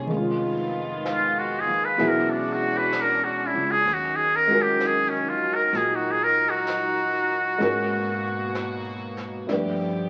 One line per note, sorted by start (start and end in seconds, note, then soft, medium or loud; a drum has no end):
0.00 0.09 G#3 soft
0.00 0.10 D#4 soft
0.00 0.11 F4 medium
0.00 0.10 G#4 soft
0.00 0.11 A#4 soft
0.00 0.11 C5 soft
0.00 0.27 C#5 soft
0.07 1.96 D#3 soft
0.07 1.96 D#3 medium
0.07 3.81 G#3 medium
0.07 1.97 G#3 soft
0.07 1.96 B3 medium
0.07 1.95 F4 medium
0.07 brush sweep soft
0.11 1.63 F1 medium
0.11 2.00 C#4 soft
0.17 2.01 F4 soft
1.05 brush sweep soft
1.05 snare soft
1.05 hi-hat pedal soft
1.14 1.40 F4 medium
1.39 1.61 F#4 medium
1.60 1.86 G#4 medium
1.67 1.96 D#2 medium
1.85 2.10 B4 medium
1.98 3.50 E1 medium
1.98 3.85 F#3 medium
1.98 3.86 B3 soft
1.98 5.69 C#4 medium
1.98 3.83 D4 medium
1.98 3.85 E4 soft
1.98 3.83 F#4 medium
1.98 3.86 G#4 medium
1.98 brush sweep soft
1.98 snare soft
2.08 2.32 A#4 medium
2.30 2.54 D4 medium
2.53 2.79 F#4 medium
2.78 3.03 B4 medium
2.92 brush sweep soft
2.92 snare soft
2.92 hi-hat pedal medium
3.01 3.26 A#4 medium
3.24 3.48 F#4 medium
3.47 3.73 E4 medium
3.54 3.83 C#2 medium
3.71 3.95 G#4 medium
3.85 5.37 D#2 medium
3.85 7.57 D#3 medium
3.85 7.57 F#3 medium
3.85 brush sweep soft
3.85 snare soft
3.94 4.17 F#4 medium
4.16 4.37 G#4 medium
4.36 4.63 A#4 medium
4.47 7.57 G#3 medium
4.47 7.58 C#4 soft
4.47 7.60 F#4 soft
4.52 7.61 A#4 medium
4.62 4.88 G4 medium
4.80 brush sweep soft
4.80 snare soft
4.80 hi-hat pedal medium
4.86 5.11 G#4 medium
5.10 5.31 C#4 medium
5.29 5.56 F4 medium
5.42 muted upright bass stroke soft
5.55 5.78 A#4 medium
5.73 7.56 A#2 medium
5.73 7.59 D#4 medium
5.73 5.97 G#4 medium
5.73 brush sweep soft
5.73 snare soft
5.95 6.13 F#4 medium
6.11 6.25 G#4 medium
6.23 6.51 A#4 medium
6.50 8.85 F#4 medium
6.67 brush sweep soft
6.67 snare soft
6.67 hi-hat pedal medium
7.58 9.45 G#2 medium
7.58 9.47 B2 medium
7.58 9.47 G#3 medium
7.58 9.47 A#3 medium
7.58 9.48 C#4 soft
7.58 9.47 F#4 medium
7.58 9.49 F#4 soft
7.58 brush sweep soft
7.58 snare soft
7.62 9.50 A#4 medium
8.55 brush sweep soft
8.55 snare soft
8.55 hi-hat pedal medium
9.17 snare soft
9.46 10.09 G2 medium
9.46 10.09 F3 medium
9.46 10.09 A3 soft
9.46 10.09 B3 medium
9.46 10.09 D4 soft
9.46 10.09 G4 soft
9.46 10.09 G4 medium
9.46 brush sweep soft
9.46 snare soft
9.52 10.09 B4 medium